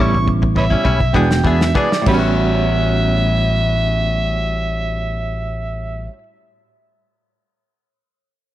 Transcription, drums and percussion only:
0.00 kick
0.14 kick
0.28 kick
0.43 kick
0.56 kick
0.71 kick
0.85 kick
1.01 kick
1.14 kick
1.31 snare
1.45 kick
1.61 snare
1.75 kick
1.92 snare
2.06 kick, crash

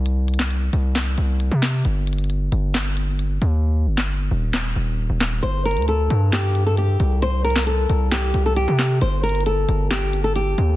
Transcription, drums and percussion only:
0.06 closed hi-hat
0.28 closed hi-hat, open hi-hat
0.34 closed hi-hat
0.39 snare, clap, closed hi-hat
0.45 closed hi-hat
0.51 closed hi-hat
0.73 closed hi-hat
0.95 snare, clap, closed hi-hat
1.18 closed hi-hat
1.40 closed hi-hat
1.63 snare, clap, closed hi-hat
1.85 closed hi-hat
2.07 closed hi-hat
2.13 closed hi-hat
2.18 closed hi-hat
2.24 closed hi-hat
2.30 closed hi-hat
2.52 closed hi-hat
2.75 snare, clap, closed hi-hat
2.97 closed hi-hat
3.19 closed hi-hat
3.42 closed hi-hat
3.98 snare, clap
4.54 snare, clap
5.21 snare, clap
5.43 closed hi-hat
5.66 closed hi-hat
5.71 closed hi-hat
5.77 closed hi-hat
5.82 closed hi-hat
5.88 closed hi-hat
6.10 closed hi-hat
6.33 snare, clap, closed hi-hat
6.55 closed hi-hat
6.77 closed hi-hat
7.00 closed hi-hat
7.22 closed hi-hat
7.45 closed hi-hat, open hi-hat
7.50 closed hi-hat
7.56 snare, clap, closed hi-hat
7.62 closed hi-hat
7.67 closed hi-hat
7.90 closed hi-hat
8.12 snare, clap, closed hi-hat
8.34 closed hi-hat
8.56 closed hi-hat
8.79 snare, clap, closed hi-hat
9.01 closed hi-hat
9.24 closed hi-hat
9.29 closed hi-hat
9.35 closed hi-hat
9.41 closed hi-hat
9.46 closed hi-hat
9.69 closed hi-hat
9.91 snare, clap, closed hi-hat
10.13 closed hi-hat
10.36 closed hi-hat
10.58 closed hi-hat

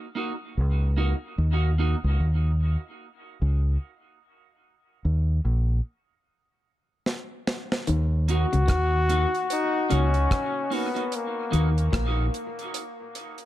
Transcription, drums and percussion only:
7.06 snare
7.47 snare
7.72 snare
7.87 closed hi-hat
8.29 closed hi-hat
8.53 closed hi-hat
8.68 kick, cross-stick, closed hi-hat
9.10 closed hi-hat
9.35 closed hi-hat
9.50 closed hi-hat
9.91 closed hi-hat
10.14 closed hi-hat
10.31 kick, cross-stick, closed hi-hat
10.72 open hi-hat
10.96 closed hi-hat
11.12 closed hi-hat
11.53 closed hi-hat
11.78 closed hi-hat
11.93 kick, cross-stick, closed hi-hat
12.34 closed hi-hat
12.59 closed hi-hat
12.74 closed hi-hat
13.15 closed hi-hat
13.38 closed hi-hat

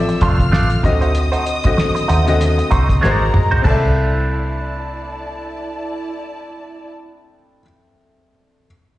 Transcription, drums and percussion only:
0.09 closed hi-hat
0.21 kick, closed hi-hat
0.40 kick, closed hi-hat
0.53 snare
0.70 closed hi-hat
0.84 kick, closed hi-hat
1.02 closed hi-hat
1.15 closed hi-hat
1.33 closed hi-hat
1.46 closed hi-hat
1.64 kick, closed hi-hat
1.78 snare
1.96 closed hi-hat
2.09 closed hi-hat
2.27 closed hi-hat
2.41 closed hi-hat
2.59 closed hi-hat
2.71 kick, closed hi-hat
2.89 kick, closed hi-hat
3.03 snare
3.34 mid tom
3.52 floor tom
3.65 kick, floor tom, crash

